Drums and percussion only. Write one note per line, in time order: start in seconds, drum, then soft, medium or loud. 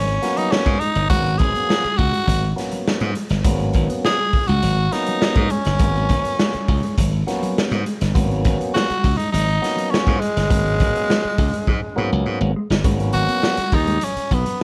0.08 closed hi-hat soft
0.23 snare soft
0.23 closed hi-hat medium
0.37 closed hi-hat medium
0.52 snare loud
0.66 kick loud
0.66 closed hi-hat soft
0.81 closed hi-hat medium
0.95 closed hi-hat medium
1.10 kick loud
1.10 closed hi-hat loud
1.26 closed hi-hat soft
1.39 kick medium
1.39 closed hi-hat medium
1.55 closed hi-hat soft
1.70 snare loud
1.84 closed hi-hat soft
1.99 kick loud
1.99 open hi-hat medium
2.14 closed hi-hat medium
2.28 kick medium
2.28 closed hi-hat loud
2.58 snare soft
2.58 closed hi-hat medium
2.71 closed hi-hat medium
2.88 snare loud
3.00 closed hi-hat soft
3.15 closed hi-hat medium
3.29 snare soft
3.29 closed hi-hat medium
3.44 kick loud
3.44 closed hi-hat loud
3.60 closed hi-hat soft
3.73 kick medium
3.73 closed hi-hat medium
3.90 closed hi-hat medium
4.05 snare loud
4.33 kick loud
4.33 open hi-hat medium
4.48 closed hi-hat medium
4.63 closed hi-hat medium
4.92 snare soft
4.92 closed hi-hat medium
5.06 closed hi-hat medium
5.22 snare loud
5.35 kick loud
5.35 closed hi-hat soft
5.50 closed hi-hat medium
5.65 snare soft
5.65 closed hi-hat medium
5.79 kick loud
5.79 closed hi-hat loud
5.96 closed hi-hat soft
6.09 kick medium
6.09 closed hi-hat medium
6.25 closed hi-hat medium
6.39 snare loud
6.53 closed hi-hat soft
6.68 kick loud
6.68 open hi-hat medium
6.83 closed hi-hat medium
6.98 kick medium
6.98 closed hi-hat loud
7.28 snare soft
7.28 closed hi-hat medium
7.43 closed hi-hat medium
7.58 snare loud
7.72 closed hi-hat soft
7.86 closed hi-hat medium
8.01 snare soft
8.01 closed hi-hat medium
8.15 kick loud
8.15 closed hi-hat loud
8.31 closed hi-hat soft
8.45 kick medium
8.45 closed hi-hat medium
8.61 closed hi-hat medium
8.76 snare loud
8.90 closed hi-hat soft
9.04 kick loud
9.04 open hi-hat medium
9.19 closed hi-hat medium
9.34 closed hi-hat loud
9.49 closed hi-hat soft
9.64 snare soft
9.64 closed hi-hat medium
9.78 closed hi-hat medium
9.94 snare loud
10.07 kick medium
10.07 closed hi-hat soft
10.22 closed hi-hat medium
10.37 snare soft
10.37 closed hi-hat medium
10.50 kick loud
10.50 closed hi-hat loud
10.66 closed hi-hat soft
10.80 kick loud
10.80 closed hi-hat medium
10.96 closed hi-hat medium
11.10 snare loud
11.38 kick loud
11.38 open hi-hat medium
11.54 closed hi-hat medium
11.67 kick medium
12.71 snare medium
12.84 kick loud
12.84 closed hi-hat loud
13.00 closed hi-hat soft
13.13 closed hi-hat medium
13.29 closed hi-hat medium
13.43 snare loud
13.57 closed hi-hat medium
13.72 kick medium
13.72 open hi-hat medium
13.87 closed hi-hat medium
14.01 closed hi-hat medium
14.17 closed hi-hat medium
14.31 kick medium
14.31 closed hi-hat medium
14.46 closed hi-hat medium